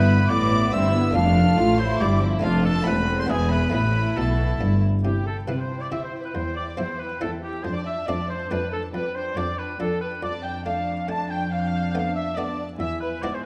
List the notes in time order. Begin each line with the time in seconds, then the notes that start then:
Already playing: G1 G2 B3 E4 B4 B5
0.29 A1 A2 B3 E4 D5 D6
0.72 G1 G2 C4 E4 E5 E6
0.94 B3
1.11 A3 D4 F4
1.15 F1 F2 A3 D4 F5 F6
1.58 A1 A2 F4
1.79 E4 C5 C6
2.01 G1 G2 G3 D5 D6
2.22 F3
2.39 A3 C4 D#4 F5
2.44 F1 F2 A3 D4 F4
2.65 A4 A5
2.82 A3 C4 E4
2.87 E1 E2 A3 C4 B4 B5
3.20 C5 C6
3.26 B3 D4 E4 G#4
3.30 E1 E2 B3 G#5
3.51 B4 B5
3.69 A3 C4 E4 B4
3.74 A1 A2 A3 B5
4.16 B1 B2 A4 A5
4.61 G1 G2
5.04 C3 E4 G4 G5
5.26 E4 A4 G5
5.47 C3 C4 E4 B4 G5
5.58 C5
5.70 E4 G5
5.80 D5
5.90 C3 C4 E4 E5 G5
6.01 C5
6.12 E4 G5
6.22 B4
6.34 E2 E4 C5 G5
6.55 E4 D5 G5
6.77 E2 C4 E4 C5 G5
6.99 E4 B4 G5
7.20 E2 C4 E4 A4 G5
7.43 E4 G4 G5
7.64 F2 D4 C5 A5
7.75 D5
7.86 D4 E5 A5
8.07 F2 A3 C4 D4 D5 A5
8.28 D4 C5 A5
8.50 F2 A3 C4 D4 B4 A5
8.71 D4 A4 A5
8.93 F2 D4 B4 G5
9.15 D4 C5 G5
9.36 F2 D4 D5 G5
9.58 D4 B4 G5
9.79 F2 D4 A4 G5
10.01 D4 B4 G5
10.22 F2 D4 D5 A5
10.43 G5
10.65 A3 D4 F5 A5
11.07 A3 D4 A5
11.30 G5
11.51 D4 F5 A5
11.60 G5
11.67 F5
11.76 G5
11.83 F5
11.91 A3 B3 G5
11.95 D4 F5
12.15 E5
12.36 A3 B3 D4 D5 A5
12.79 E2 E4 E5 G#5
13.00 B4
13.22 G#2 G#3 B3 E4 D5
13.33 C5